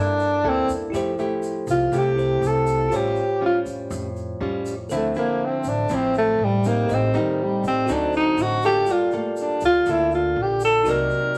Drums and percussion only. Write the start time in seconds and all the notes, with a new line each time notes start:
0.19 shaker
0.69 shaker
0.94 shaker
1.19 shaker
1.43 shaker
1.67 shaker
1.93 shaker
2.18 shaker
2.43 shaker
2.67 shaker
2.92 shaker
3.16 shaker
3.66 shaker
3.91 shaker
4.16 shaker
4.66 shaker
4.90 shaker
5.15 shaker
5.64 shaker
5.89 shaker
6.14 shaker
6.64 shaker
6.89 shaker
7.14 shaker
7.64 shaker
7.88 shaker
8.13 shaker
8.38 shaker
8.62 shaker
8.86 shaker
9.11 shaker
9.36 shaker
9.60 shaker
9.86 shaker
10.11 shaker
10.60 shaker
10.85 shaker
11.10 shaker
11.35 shaker